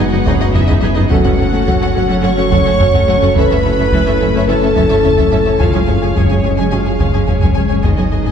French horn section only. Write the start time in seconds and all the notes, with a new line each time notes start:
0.00 F#4
0.55 E4
0.98 D#4
1.10 F#4
2.24 C#5
3.36 B4
4.48 A4
5.60 F4
6.15 C#4
6.58 G#4
6.72 F4
7.28 C#4
7.85 D#4